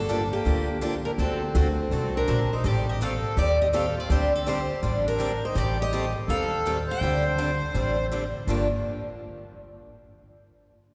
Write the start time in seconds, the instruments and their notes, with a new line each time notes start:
Already playing: upright bass G1, accordion D4, steel-string acoustic guitar A4
0.09 steel-string acoustic guitar D3 F3 A#3 D4 G4
0.30 accordion A#3, steel-string acoustic guitar G4
0.45 upright bass D2, steel-string acoustic guitar D3 F3 A#3 D4 G4
0.81 steel-string acoustic guitar D3 F3 A#3 D4 G4
1.05 accordion D4, steel-string acoustic guitar A#4
1.18 upright bass D2, steel-string acoustic guitar D3 A3 C4 F#4 A4, accordion C4
1.55 upright bass D2, steel-string acoustic guitar D3 A3 C4 F#4 A4
1.91 upright bass C2, steel-string acoustic guitar D3 A3 C4 F#4 A4
2.15 accordion D4, steel-string acoustic guitar A#4
2.28 upright bass A#1, steel-string acoustic guitar D3 A3 C4 F#4 A4
2.52 accordion D#4, steel-string acoustic guitar C5
2.64 upright bass A1, steel-string acoustic guitar D#3 G3 C4 G4 A4 D5, accordion G4
2.87 accordion G4, steel-string acoustic guitar D#5
3.01 steel-string acoustic guitar D#3 G3 C4 G4 A4 F5, accordion A4
3.36 upright bass D#2, steel-string acoustic guitar D#3 G3 C4 G4 A4 D5, accordion G4
3.60 accordion G4, steel-string acoustic guitar D#5
3.73 steel-string acoustic guitar D#3 G3 C4 G4 A4 F5, accordion A4
3.96 accordion F4, steel-string acoustic guitar D5
4.10 upright bass D2, steel-string acoustic guitar D3 G3 C4 D4 G4 C5, accordion G4
4.35 accordion C4, steel-string acoustic guitar A4
4.46 steel-string acoustic guitar D3 G3 C4 D4 G4 C5, accordion G4
4.83 upright bass A1, steel-string acoustic guitar D3 G3 C4 D4 G4
5.05 accordion D4, steel-string acoustic guitar A#4
5.19 steel-string acoustic guitar D3 G3 C4 D4 G4
5.43 accordion D#4, steel-string acoustic guitar C5
5.55 upright bass A1, steel-string acoustic guitar D#3 G3 C4 G4 A4 D5, accordion G4
5.79 accordion G4, steel-string acoustic guitar D#5
5.93 steel-string acoustic guitar D#3 G3 C4 G4 A4
6.27 upright bass D#2, steel-string acoustic guitar D#3 G3 C4 G4 A4 F5, accordion A4
6.66 steel-string acoustic guitar D#3 G3 C4 G4 A4
6.87 accordion C5
6.91 steel-string acoustic guitar G5
7.01 upright bass D2, steel-string acoustic guitar D3 G3 C4 D4 G4
7.38 steel-string acoustic guitar D3 G3 C4 D4 G4
7.74 upright bass A1, steel-string acoustic guitar D3 G3 C4 D4 G4
8.12 steel-string acoustic guitar D3 G3 C4 D4 G4
8.47 upright bass G1, steel-string acoustic guitar G2 D3 F3 A#3 D4 G4